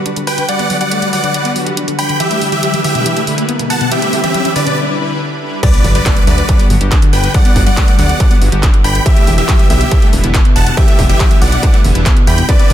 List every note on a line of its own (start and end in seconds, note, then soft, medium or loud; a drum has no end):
0.00 riser medium
0.06 0.12 D4 medium
0.06 closed hi-hat medium
0.16 0.23 D3 medium
0.16 closed hi-hat medium
0.27 0.42 D3 medium
0.27 0.42 G3 medium
0.27 0.34 D4 medium
0.27 0.42 F#4 medium
0.27 0.46 B4 medium
0.27 0.42 B4 medium
0.27 0.46 G5 medium
0.27 open hi-hat medium
0.38 0.44 D3 medium
0.38 closed hi-hat medium
0.49 0.64 D3 medium
0.49 0.55 G3 medium
0.49 0.64 G3 medium
0.49 0.64 F#4 medium
0.49 0.64 B4 medium
0.49 0.76 D5 medium
0.49 0.76 F#5 loud
0.49 closed hi-hat medium
0.59 0.66 B3 medium
0.59 closed hi-hat medium
0.70 0.78 D3 medium
0.70 0.74 F#3 medium
0.70 0.78 G3 medium
0.70 0.78 F#4 medium
0.70 0.78 B4 medium
0.70 open hi-hat loud
0.81 0.96 D3 medium
0.81 0.96 G3 medium
0.81 0.90 G3 loud
0.81 0.96 F#4 medium
0.81 0.96 B4 medium
0.81 1.09 D5 medium
0.81 1.09 F#5 loud
0.81 closed hi-hat medium
0.91 0.98 A3 medium
0.91 closed hi-hat medium
1.02 1.17 D3 medium
1.02 1.09 G3 medium
1.02 1.17 G3 medium
1.02 1.17 F#4 medium
1.02 1.17 B4 medium
1.02 closed hi-hat medium
1.13 1.17 F#3 loud
1.13 1.50 D5 medium
1.13 1.50 F#5 loud
1.13 open hi-hat medium
1.24 1.30 D3 medium
1.24 1.31 D3 medium
1.24 1.31 G3 medium
1.24 1.31 F#4 medium
1.24 1.31 B4 medium
1.24 closed hi-hat medium
1.34 1.42 D3 medium
1.34 1.42 G3 medium
1.34 1.44 G3 medium
1.34 1.42 F#4 medium
1.34 1.42 B4 medium
1.34 closed hi-hat medium
1.45 1.53 D3 medium
1.45 1.53 G3 medium
1.45 1.51 B3 medium
1.45 1.53 F#4 medium
1.45 1.53 B4 medium
1.45 closed hi-hat medium
1.56 1.71 D3 medium
1.56 1.60 F#3 medium
1.56 1.71 G3 medium
1.56 1.71 F#4 medium
1.56 1.71 B4 medium
1.56 open hi-hat loud
1.67 1.73 G4 medium
1.67 closed hi-hat medium
1.77 1.84 D4 medium
1.77 closed hi-hat medium
1.88 1.94 D3 medium
1.88 closed hi-hat medium
1.99 2.14 D3 medium
1.99 2.14 G3 medium
1.99 2.05 D4 medium
1.99 2.14 F#4 medium
1.99 2.14 B4 medium
1.99 2.17 G5 medium
1.99 2.17 B5 medium
1.99 open hi-hat loud
2.09 2.16 D3 medium
2.09 closed hi-hat medium
2.20 2.35 D3 medium
2.20 2.26 E3 medium
2.20 2.35 G3 medium
2.20 2.35 E4 medium
2.20 2.48 G4 medium
2.20 2.35 B4 medium
2.20 2.48 E5 loud
2.20 closed hi-hat medium
2.31 2.37 A3 medium
2.31 closed hi-hat medium
2.41 2.49 D3 medium
2.41 2.45 D3 medium
2.41 2.49 G3 medium
2.41 2.49 E4 medium
2.41 2.49 B4 medium
2.41 open hi-hat loud
2.52 2.67 D3 medium
2.52 2.62 E3 loud
2.52 2.67 G3 medium
2.52 2.67 E4 medium
2.52 2.80 G4 medium
2.52 2.67 B4 medium
2.52 2.80 E5 medium
2.52 2.80 E5 loud
2.52 closed hi-hat soft
2.63 2.69 F#3 medium
2.63 closed hi-hat medium
2.74 2.89 D3 medium
2.74 2.80 E3 medium
2.74 2.89 G3 medium
2.74 2.89 E4 medium
2.74 2.89 B4 medium
2.74 closed hi-hat soft
2.84 2.88 D3 loud
2.84 3.21 G4 medium
2.84 3.21 E5 loud
2.84 open hi-hat loud
2.95 3.01 B2 medium
2.95 3.03 D3 medium
2.95 3.03 G3 medium
2.95 3.03 E4 medium
2.95 3.03 B4 medium
2.95 closed hi-hat medium
3.06 3.13 D3 medium
3.06 3.15 E3 medium
3.06 3.13 G3 medium
3.06 3.13 E4 medium
3.06 3.13 B4 medium
3.06 closed hi-hat medium
3.17 3.24 D3 medium
3.17 3.24 G3 medium
3.17 3.23 A3 medium
3.17 3.24 E4 medium
3.17 3.24 B4 medium
3.17 closed hi-hat medium
3.27 3.31 D3 medium
3.27 3.42 D3 medium
3.27 3.42 G3 medium
3.27 3.42 E4 medium
3.27 3.42 B4 medium
3.27 open hi-hat loud
3.38 3.44 E4 medium
3.38 closed hi-hat medium
3.49 3.55 B3 medium
3.49 closed hi-hat medium
3.59 3.66 B2 medium
3.59 closed hi-hat medium
3.70 3.85 D3 medium
3.70 3.85 G3 medium
3.70 3.76 B3 medium
3.70 3.85 E4 medium
3.70 3.85 B4 medium
3.70 3.89 F#5 medium
3.70 3.89 A5 medium
3.70 open hi-hat loud
3.81 3.87 B2 medium
3.81 closed hi-hat medium
3.91 4.07 D3 medium
3.91 3.98 E3 medium
3.91 4.07 G3 medium
3.91 4.07 E4 medium
3.91 4.19 G4 medium
3.91 4.07 B4 medium
3.91 4.19 E5 loud
3.91 closed hi-hat medium
4.02 4.09 A3 medium
4.02 closed hi-hat medium
4.13 4.20 D3 medium
4.13 4.17 D3 medium
4.13 4.20 G3 medium
4.13 4.20 E4 medium
4.13 4.20 B4 medium
4.13 open hi-hat loud
4.24 4.39 D3 medium
4.24 4.33 E3 loud
4.24 4.39 G3 medium
4.24 4.39 E4 medium
4.24 4.51 G4 medium
4.24 4.39 B4 medium
4.24 4.51 E5 loud
4.24 closed hi-hat soft
4.34 4.41 F#3 medium
4.34 closed hi-hat medium
4.45 4.60 D3 medium
4.45 4.51 E3 medium
4.45 4.60 G3 medium
4.45 4.60 E4 medium
4.45 4.60 B4 medium
4.45 closed hi-hat medium
4.56 4.60 D3 loud
4.56 4.77 B4 medium
4.56 4.77 D5 loud
4.56 open hi-hat medium
4.66 4.73 B2 medium
4.66 4.74 D3 medium
4.66 4.74 G3 medium
4.66 4.74 E4 medium
4.66 4.74 B4 medium
4.66 closed hi-hat medium
4.77 4.85 D3 medium
4.77 4.85 G3 medium
4.77 4.85 E4 medium
4.77 4.85 B4 medium
4.88 4.96 D3 medium
4.88 4.96 G3 medium
4.88 4.96 E4 medium
4.88 4.96 B4 medium
4.99 5.14 D3 medium
4.99 5.14 G3 medium
4.99 5.14 E4 medium
4.99 5.14 B4 medium
5.42 5.57 D3 medium
5.42 5.57 G3 medium
5.42 5.57 E4 medium
5.42 5.57 B4 medium
5.63 5.78 D3 medium
5.63 5.78 G3 medium
5.63 5.69 G3 medium
5.63 5.78 B3 medium
5.63 5.78 F#4 medium
5.63 5.91 B4 medium
5.63 5.91 D5 loud
5.63 kick loud
5.63 closed hi-hat loud
5.63 crash loud
5.63 impact medium
5.74 5.80 B3 medium
5.74 closed hi-hat medium
5.84 6.00 G1 loud
5.84 5.92 D3 medium
5.84 5.88 F#3 medium
5.84 5.92 G3 medium
5.84 5.92 B3 medium
5.84 5.92 F#4 medium
5.84 open hi-hat loud
5.95 6.10 D3 medium
5.95 6.10 G3 medium
5.95 6.04 G3 loud
5.95 6.10 B3 medium
5.95 6.10 F#4 medium
5.95 6.23 B4 medium
5.95 6.23 D5 loud
5.95 closed hi-hat medium
6.06 6.12 A3 medium
6.06 kick loud
6.06 clap loud
6.06 closed hi-hat loud
6.17 6.32 D3 medium
6.17 6.23 G3 medium
6.17 6.32 G3 medium
6.17 6.32 B3 medium
6.17 6.32 F#4 medium
6.17 closed hi-hat medium
6.27 6.42 D2 loud
6.27 6.31 F#3 loud
6.27 6.64 B4 medium
6.27 6.64 D5 loud
6.27 open hi-hat medium
6.38 6.44 D3 medium
6.38 6.46 D3 medium
6.38 6.46 G3 medium
6.38 6.46 B3 medium
6.38 6.46 F#4 medium
6.38 closed hi-hat medium
6.49 6.56 D3 medium
6.49 6.58 G3 medium
6.49 6.56 G3 medium
6.49 6.56 B3 medium
6.49 6.56 F#4 medium
6.49 kick loud
6.49 closed hi-hat loud
6.59 6.67 D3 medium
6.59 6.67 G3 medium
6.59 6.67 B3 medium
6.59 6.66 B3 medium
6.59 6.67 F#4 medium
6.59 closed hi-hat medium
6.70 6.78 G1 medium
6.70 6.85 D3 medium
6.70 6.74 F#3 medium
6.70 6.85 G3 medium
6.70 6.85 B3 medium
6.70 6.85 F#4 medium
6.70 open hi-hat loud
6.81 6.96 G1 medium
6.81 6.87 G4 medium
6.81 closed hi-hat medium
6.92 6.98 D4 medium
6.92 kick loud
6.92 clap loud
6.92 closed hi-hat medium
7.02 7.09 D3 medium
7.02 closed hi-hat medium
7.13 7.28 G1 medium
7.13 7.28 D3 medium
7.13 7.28 G3 medium
7.13 7.28 B3 medium
7.13 7.19 D4 medium
7.13 7.28 F#4 medium
7.13 7.31 B4 medium
7.13 7.31 G5 medium
7.13 open hi-hat medium
7.24 7.30 D3 medium
7.24 closed hi-hat medium
7.34 7.49 D3 medium
7.34 7.41 G3 medium
7.34 7.49 G3 medium
7.34 7.49 B3 medium
7.34 7.49 F#4 medium
7.34 7.62 D5 medium
7.34 7.62 F#5 loud
7.34 kick loud
7.34 closed hi-hat medium
7.45 7.51 B3 medium
7.45 closed hi-hat medium
7.56 7.71 G1 loud
7.56 7.63 D3 medium
7.56 7.60 F#3 medium
7.56 7.63 G3 medium
7.56 7.63 B3 medium
7.56 7.63 F#4 medium
7.56 kick medium
7.56 open hi-hat loud
7.66 7.82 D3 medium
7.66 7.76 G3 loud
7.66 7.82 G3 medium
7.66 7.82 B3 medium
7.66 7.82 F#4 medium
7.66 7.94 D5 medium
7.66 7.94 F#5 loud
7.66 closed hi-hat medium
7.77 7.83 A3 medium
7.77 kick loud
7.77 clap loud
7.77 closed hi-hat medium
7.88 8.03 D3 medium
7.88 7.94 G3 medium
7.88 8.03 G3 medium
7.88 8.03 B3 medium
7.88 8.03 F#4 medium
7.88 closed hi-hat medium
7.98 8.14 D2 medium
7.98 8.02 F#3 loud
7.98 8.36 D5 medium
7.98 8.36 F#5 loud
7.98 open hi-hat loud
8.09 8.16 D3 medium
8.09 8.17 D3 medium
8.09 8.17 G3 medium
8.09 8.17 B3 medium
8.09 8.17 F#4 medium
8.09 closed hi-hat medium
8.20 8.28 D3 medium
8.20 8.29 G3 medium
8.20 8.28 G3 medium
8.20 8.28 B3 medium
8.20 8.28 F#4 medium
8.20 kick loud
8.20 closed hi-hat loud
8.31 8.38 D3 medium
8.31 8.38 G3 medium
8.31 8.37 B3 medium
8.31 8.38 B3 medium
8.31 8.38 F#4 medium
8.31 closed hi-hat medium
8.42 8.49 G1 medium
8.42 8.57 D3 medium
8.42 8.45 F#3 medium
8.42 8.57 G3 medium
8.42 8.57 B3 medium
8.42 8.57 F#4 medium
8.42 open hi-hat loud
8.52 8.68 G1 medium
8.52 8.59 G4 medium
8.52 closed hi-hat medium
8.63 8.69 D4 medium
8.63 kick loud
8.63 clap loud
8.63 closed hi-hat medium
8.74 8.80 D3 medium
8.74 closed hi-hat medium
8.84 9.00 G1 medium
8.84 8.99 D3 medium
8.84 8.99 G3 medium
8.84 8.99 B3 medium
8.84 8.91 D4 medium
8.84 8.99 F#4 medium
8.84 9.03 G5 medium
8.84 9.03 B5 medium
8.84 open hi-hat loud
8.95 9.01 D3 medium
8.95 closed hi-hat medium
9.06 9.21 D3 loud
9.06 9.12 E3 medium
9.06 9.21 G3 medium
9.06 9.21 B3 medium
9.06 9.21 E4 medium
9.06 9.34 G4 medium
9.06 9.34 E5 loud
9.06 kick loud
9.06 closed hi-hat medium
9.17 9.23 A3 medium
9.17 closed hi-hat medium
9.27 9.43 E1 loud
9.27 9.35 D3 medium
9.27 9.31 D3 medium
9.27 9.35 G3 medium
9.27 9.35 B3 medium
9.27 9.35 E4 medium
9.27 open hi-hat loud
9.38 9.53 D3 medium
9.38 9.47 E3 loud
9.38 9.53 G3 medium
9.38 9.53 B3 medium
9.38 9.53 E4 medium
9.38 9.66 G4 medium
9.38 9.66 E5 loud
9.38 closed hi-hat medium
9.49 9.55 F#3 medium
9.49 kick loud
9.49 clap loud
9.49 closed hi-hat medium
9.59 9.74 D3 medium
9.59 9.66 E3 medium
9.59 9.74 G3 medium
9.59 9.74 B3 medium
9.59 9.74 E4 medium
9.59 closed hi-hat medium
9.70 9.85 B1 medium
9.70 9.74 D3 loud
9.70 10.07 G4 medium
9.70 10.07 E5 loud
9.70 10.07 E5 medium
9.70 open hi-hat loud
9.81 9.87 B2 medium
9.81 9.88 D3 medium
9.81 9.88 G3 medium
9.81 9.88 B3 medium
9.81 9.88 E4 medium
9.81 closed hi-hat medium
9.91 9.99 D3 medium
9.91 10.01 E3 medium
9.91 9.99 G3 medium
9.91 9.99 B3 medium
9.91 9.99 E4 medium
9.91 kick loud
9.91 closed hi-hat medium
10.02 10.10 D3 medium
10.02 10.10 G3 medium
10.02 10.09 A3 medium
10.02 10.10 B3 medium
10.02 10.10 E4 medium
10.02 closed hi-hat medium
10.13 10.21 E1 medium
10.13 10.28 D3 medium
10.13 10.17 D3 medium
10.13 10.28 G3 medium
10.13 10.28 B3 medium
10.13 10.28 E4 medium
10.13 open hi-hat loud
10.24 10.39 E1 medium
10.24 10.30 E4 medium
10.24 closed hi-hat medium
10.34 10.41 B3 medium
10.34 kick loud
10.34 clap loud
10.34 closed hi-hat medium
10.45 10.51 B2 medium
10.45 closed hi-hat medium
10.56 10.71 E1 medium
10.56 10.71 D3 medium
10.56 10.71 G3 medium
10.56 10.71 B3 medium
10.56 10.62 B3 medium
10.56 10.71 E4 medium
10.56 10.74 F#5 medium
10.56 10.74 A5 medium
10.56 open hi-hat loud
10.67 10.73 B2 medium
10.67 closed hi-hat medium
10.77 10.92 D3 medium
10.77 10.84 E3 medium
10.77 10.92 G3 medium
10.77 10.92 B3 medium
10.77 10.92 E4 medium
10.77 11.05 G4 medium
10.77 11.05 E5 loud
10.77 kick loud
10.77 closed hi-hat medium
10.88 10.94 A3 medium
10.88 closed hi-hat medium
10.99 11.14 E1 loud
10.99 11.06 D3 medium
10.99 11.02 D3 medium
10.99 11.06 G3 medium
10.99 11.06 B3 medium
10.99 11.06 E4 medium
10.99 kick medium
10.99 open hi-hat loud
11.09 11.24 D3 medium
11.09 11.19 E3 loud
11.09 11.24 G3 medium
11.09 11.24 B3 medium
11.09 11.24 E4 medium
11.09 11.37 G4 medium
11.09 11.37 E5 loud
11.09 closed hi-hat medium
11.20 11.26 F#3 medium
11.20 kick loud
11.20 clap loud
11.20 closed hi-hat medium
11.31 11.46 D3 medium
11.31 11.37 E3 medium
11.31 11.46 G3 medium
11.31 11.46 B3 medium
11.31 11.46 E4 medium
11.31 closed hi-hat medium
11.41 11.57 B1 medium
11.41 11.45 D3 loud
11.41 11.78 D5 medium
11.41 11.78 F#5 loud
11.41 11.79 F#5 loud
11.41 open hi-hat medium
11.52 11.59 B2 medium
11.52 11.60 D3 medium
11.52 11.60 G3 medium
11.52 11.60 B3 medium
11.52 11.60 E4 medium
11.52 closed hi-hat medium
11.63 11.70 D3 medium
11.63 11.72 E3 medium
11.63 11.70 G3 medium
11.63 11.70 B3 medium
11.63 11.70 E4 medium
11.63 kick loud
11.63 closed hi-hat medium
11.74 11.81 D3 medium
11.74 11.81 G3 medium
11.74 11.80 A3 medium
11.74 11.81 B3 medium
11.74 11.81 E4 medium
11.74 closed hi-hat soft
11.84 11.92 E1 medium
11.84 11.88 D3 medium
11.84 11.99 D3 medium
11.84 11.99 G3 medium
11.84 11.99 B3 medium
11.84 11.99 E4 medium
11.84 open hi-hat loud
11.95 12.10 E1 medium
11.95 12.01 E4 medium
11.95 closed hi-hat medium
12.06 12.12 B3 medium
12.06 kick loud
12.06 clap loud
12.06 closed hi-hat medium
12.16 12.23 B2 medium
12.16 closed hi-hat medium
12.27 12.43 E2 loud
12.27 12.42 D3 medium
12.27 12.42 G3 medium
12.27 12.42 B3 medium
12.27 12.34 B3 medium
12.27 12.42 E4 medium
12.27 12.46 G5 medium
12.27 12.46 B5 medium
12.27 open hi-hat loud
12.38 12.44 B2 medium
12.38 closed hi-hat medium
12.49 12.64 D3 medium
12.49 12.64 G3 medium
12.49 12.55 C4 medium
12.49 12.64 C4 medium
12.49 12.64 E4 medium
12.49 12.73 B4 medium
12.49 12.73 D5 loud
12.49 kick loud
12.49 closed hi-hat medium
12.59 12.66 F#4 medium
12.59 closed hi-hat medium
12.70 12.73 C2 loud
12.70 12.73 D3 medium
12.70 12.73 G3 medium
12.70 12.73 B3 medium
12.70 12.73 C4 medium
12.70 12.73 E4 medium
12.70 open hi-hat loud